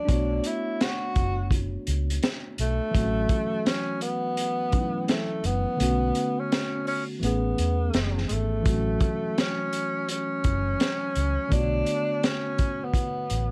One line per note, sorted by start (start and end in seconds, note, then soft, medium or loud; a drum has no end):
0.00 0.48 D4 medium
0.05 0.39 B1 loud
0.05 2.89 A3 medium
0.05 2.90 B3 medium
0.05 2.89 D4 medium
0.05 kick medium
0.05 closed hi-hat medium
0.10 2.92 F#4 medium
0.10 2.91 C#5 medium
0.44 0.83 E4 medium
0.44 closed hi-hat medium
0.81 1.52 F#4 medium
0.81 snare loud
0.81 closed hi-hat medium
1.16 1.76 F#1 medium
1.16 kick medium
1.16 closed hi-hat medium
1.51 kick medium
1.51 closed hi-hat medium
1.87 2.18 C#2 medium
1.87 closed hi-hat medium
2.10 closed hi-hat medium
2.23 snare loud
2.23 closed hi-hat medium
2.58 2.79 B1 medium
2.58 3.68 A3 loud
2.58 closed hi-hat medium
2.91 3.25 A1 loud
2.91 4.68 E3 medium
2.91 4.69 F#3 medium
2.91 4.69 A3 medium
2.91 kick medium
2.91 closed hi-hat medium
2.96 3.04 C4 soft
2.96 4.71 F#4 medium
3.02 4.73 C#4 medium
3.29 kick medium
3.29 closed hi-hat medium
3.66 4.02 C#4 loud
3.66 snare loud
3.66 closed hi-hat medium
4.01 5.06 B3 loud
4.01 closed hi-hat medium
4.37 closed hi-hat medium
4.71 5.79 E3 soft
4.71 5.80 F#3 soft
4.71 5.77 A3 soft
4.71 5.80 C#4 soft
4.71 4.82 D#4 soft
4.71 kick medium
4.71 closed hi-hat medium
4.81 5.84 E4 medium
5.06 5.47 A3 medium
5.06 5.11 B3 medium
5.06 snare loud
5.06 closed hi-hat medium
5.44 5.64 F#1 medium
5.44 6.41 B3 loud
5.44 closed hi-hat medium
5.76 6.10 B1 loud
5.76 7.18 D3 medium
5.76 7.19 A3 medium
5.76 7.20 B3 medium
5.76 closed hi-hat medium
5.81 7.21 C#4 medium
5.81 7.22 F#4 medium
6.15 closed hi-hat medium
6.40 6.87 C#4 medium
6.52 snare loud
6.52 closed hi-hat medium
6.87 7.04 C#4 medium
6.87 open hi-hat soft
7.20 7.53 A1 medium
7.20 8.61 E3 medium
7.20 8.62 A3 soft
7.20 8.63 B3 medium
7.20 closed hi-hat medium
7.24 8.22 B3 medium
7.24 8.64 C#4 medium
7.24 8.65 G#4 medium
7.58 7.89 E2 medium
7.58 closed hi-hat medium
7.94 8.24 F#1 medium
7.94 snare loud
7.94 closed hi-hat medium
8.18 snare soft
8.28 8.60 G#1 medium
8.28 8.35 G#3 medium
8.28 closed hi-hat medium
8.33 9.41 A3 medium
8.62 8.96 A1 loud
8.62 11.46 E3 medium
8.62 11.47 F#3 medium
8.62 11.47 A3 medium
8.62 kick medium
8.62 closed hi-hat medium
8.67 8.75 C4 soft
8.67 11.49 F#4 medium
8.74 11.51 C#4 medium
9.00 kick loud
9.00 closed hi-hat medium
9.38 10.10 C#4 medium
9.38 snare loud
9.38 closed hi-hat medium
9.73 closed hi-hat medium
10.09 11.55 C#4 medium
10.09 closed hi-hat medium
10.44 10.75 F#1 medium
10.44 kick medium
10.44 closed hi-hat medium
10.80 snare loud
10.80 closed hi-hat medium
11.15 11.36 C#2 medium
11.15 closed hi-hat medium
11.49 11.82 B1 loud
11.49 13.51 D3 medium
11.49 13.51 A3 medium
11.49 13.51 B3 medium
11.49 kick medium
11.49 closed hi-hat medium
11.53 12.27 D4 loud
11.53 13.51 F#4 medium
11.53 13.51 C#5 medium
11.86 closed hi-hat medium
12.23 12.86 C#4 loud
12.23 snare loud
12.23 closed hi-hat medium
12.58 kick medium
12.58 closed hi-hat medium
12.85 13.51 B3 medium
12.94 kick medium
12.94 closed hi-hat medium
13.30 13.51 A1 medium
13.30 closed hi-hat medium